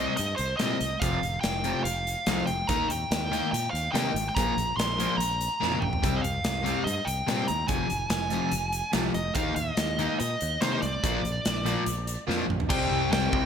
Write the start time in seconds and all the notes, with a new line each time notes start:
Already playing: C3 G3 C4 D#5
0.17 G2 D#5, closed hi-hat
0.36 C2 C5, closed hi-hat
0.57 A#2 C3 G3 C4 D#5, snare, closed hi-hat
0.81 C2, closed hi-hat
1.00 F1 F2 C3 F3 F5, kick, closed hi-hat
1.23 F1, closed hi-hat
1.41 F1 G5, snare, closed hi-hat
1.64 F2 C3 F3, closed hi-hat
1.84 F1 F5, closed hi-hat
2.07 closed hi-hat
2.26 C2 F2 C3 F3, snare, closed hi-hat
2.46 F1 G5, closed hi-hat
2.67 D#2 D#3 A#3 D#4 A#5, kick, closed hi-hat
2.88 D#2 G5, closed hi-hat
3.11 D#2, snare, closed hi-hat
3.32 D#3 A#3 D#4, snare, closed hi-hat
3.52 A#2 G5, closed hi-hat
3.71 D#2 F5
3.75 closed hi-hat
3.92 C3 D#3 A#3 D#4 G5, snare, closed hi-hat
4.14 G#1, closed hi-hat
4.29 G5
4.35 A#1 A#2 F3 A#3 A#5, kick, closed hi-hat
4.57 A#1, closed hi-hat
4.77 A#1 C6, snare, closed hi-hat
5.00 A#2 F3 A#3, closed hi-hat
5.17 A#1 A#5, closed hi-hat
5.41 closed hi-hat
5.62 F2 A#2 F3 A#3, snare
5.72 high tom
5.80 A#1 G5, mid tom
5.93 floor tom
6.03 C2 C3 G3 C4, kick, closed hi-hat
6.16 D#5
6.21 C2 F5, closed hi-hat
6.44 C2, snare, closed hi-hat
6.66 C3 G3 C4, snare, closed hi-hat
6.84 G2 D#5, closed hi-hat
7.05 C2 G5, closed hi-hat
7.27 A#2 C3 G3 C4, snare, closed hi-hat
7.48 D#2 A#5, closed hi-hat
7.67 F1 F2 C3 F3 G#5, kick, closed hi-hat
7.90 F1, closed hi-hat
8.10 F1 G#5, snare, closed hi-hat
8.30 F2 C3 F3, closed hi-hat
8.52 F1, closed hi-hat
8.73 closed hi-hat
8.92 C2 F2 C3 F3, snare, closed hi-hat
9.14 F1 D#5, closed hi-hat
9.34 D#2 D#3 A#3 D#4 F5, kick, closed hi-hat
9.56 D#2 D#5, closed hi-hat
9.77 D#2, snare, closed hi-hat
9.99 D#3 A#3 D#4, closed hi-hat
10.20 A#2 D#5, closed hi-hat
10.41 D#2, closed hi-hat
10.60 C3 D#3 A#3 D#4 C5, snare, closed hi-hat
10.73 C5
10.82 C2 D5, closed hi-hat
11.03 A#1 A#2 F3 A#3, kick, closed hi-hat
11.24 A#1, closed hi-hat
11.45 A#1, snare, closed hi-hat
11.65 A#2 F3 A#3, snare, closed hi-hat
11.86 A#1, closed hi-hat
12.07 closed hi-hat
12.27 F2 A#2 F3 A#3, snare
12.48 A#1, mid tom
12.60 floor tom
12.69 C2 C3 G3 C4 G4 D#5 G5, kick, crash
12.91 C2
13.12 C2 G5, snare, crash
13.31 C2 C3 G3 C4, kick